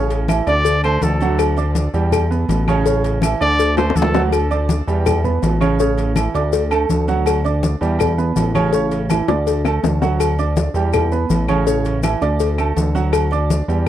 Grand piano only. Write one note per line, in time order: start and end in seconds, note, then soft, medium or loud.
0.00 0.22 C#3 medium
0.00 0.22 C#4 medium
0.00 0.23 C#5 medium
0.28 0.44 E3 medium
0.28 0.44 E4 medium
0.28 0.44 E5 medium
0.48 0.78 D4 medium
0.48 0.78 D5 medium
0.48 0.78 D6 medium
0.84 1.14 A3 medium
0.84 1.15 A4 medium
0.84 1.15 A5 medium
1.22 1.52 F#3 medium
1.22 1.52 F#4 medium
1.22 1.52 F#5 medium
1.57 1.87 D4 medium
1.57 1.88 D5 medium
1.57 1.88 D6 medium
1.94 2.24 G3 medium
1.94 2.24 G4 medium
1.94 2.25 G5 medium
2.31 2.61 B3 medium
2.31 2.61 B4 medium
2.31 2.61 B5 medium
2.68 2.83 C#3 loud
2.68 2.83 C#4 loud
2.68 2.83 C#5 loud
2.86 3.16 C#3 medium
2.86 3.17 C#4 medium
2.86 3.17 C#5 medium
3.23 3.38 E3 medium
3.23 3.38 E4 medium
3.23 3.38 E5 medium
3.41 3.71 D4 medium
3.41 3.71 D5 medium
3.41 3.71 D6 medium
3.78 4.08 A3 medium
3.78 4.08 A4 medium
3.78 4.08 A5 medium
4.14 4.29 F#3 medium
4.14 4.29 F#4 medium
4.14 4.30 F#5 medium
4.50 4.81 D4 medium
4.50 4.81 D5 medium
4.50 4.81 D6 medium
4.88 5.18 G3 medium
4.88 5.18 G4 medium
4.88 5.18 G5 medium
5.24 5.54 B3 medium
5.24 5.55 B4 medium
5.24 5.55 B5 medium
5.61 5.76 C#3 loud
5.61 5.76 C#4 medium
5.61 5.76 C#5 loud
5.80 6.10 C#3 medium
5.80 6.10 C#4 medium
5.80 6.10 C#5 medium
6.17 6.32 E3 medium
6.17 6.32 E4 medium
6.17 6.32 E5 medium
6.35 6.65 D4 medium
6.35 6.65 D5 medium
6.35 6.65 D6 medium
6.71 7.02 A3 medium
6.71 7.02 A4 medium
6.71 7.02 A5 medium
7.08 7.38 F#3 medium
7.08 7.39 F#4 medium
7.08 7.39 F#5 medium
7.45 7.75 D4 medium
7.45 7.75 D5 medium
7.45 7.75 D6 medium
7.82 8.12 G3 medium
7.82 8.12 G4 medium
7.82 8.12 G5 medium
8.18 8.48 B3 medium
8.18 8.48 B4 medium
8.18 8.48 B5 medium
8.55 8.70 C#3 loud
8.55 8.70 C#4 loud
8.55 8.70 C#5 loud
8.74 9.04 C#3 medium
8.74 9.04 C#4 medium
8.74 9.04 C#5 medium
9.11 9.25 E3 medium
9.11 9.25 E4 medium
9.11 9.26 E5 medium
9.28 9.58 D4 medium
9.28 9.58 D5 medium
9.28 9.58 D6 medium
9.65 9.95 A3 medium
9.65 9.95 A4 medium
9.65 9.95 A5 medium
10.02 10.32 F#3 medium
10.02 10.32 F#4 medium
10.02 10.32 F#5 medium
10.39 10.69 D4 medium
10.39 10.69 D5 medium
10.39 10.69 D6 medium
10.75 11.05 G3 medium
10.75 11.05 G4 medium
10.75 11.06 G5 medium
11.12 11.42 B3 medium
11.12 11.42 B4 medium
11.12 11.42 B5 medium
11.48 11.63 C#3 loud
11.48 11.64 C#4 loud
11.48 11.64 C#5 medium
11.66 11.96 C#3 medium
11.66 11.97 C#4 medium
11.66 11.97 C#5 medium
12.03 12.18 E3 medium
12.03 12.18 E4 medium
12.03 12.19 E5 medium
12.21 12.51 D4 medium
12.21 12.52 D5 medium
12.21 12.52 D6 medium
12.58 12.88 A3 medium
12.58 12.88 A4 medium
12.58 12.89 A5 medium
12.95 13.25 F#3 medium
12.95 13.25 F#4 medium
12.95 13.25 F#5 medium
13.32 13.62 D4 medium
13.32 13.62 D5 medium
13.32 13.62 D6 medium
13.68 13.88 G3 medium
13.68 13.88 G4 medium
13.68 13.88 G5 medium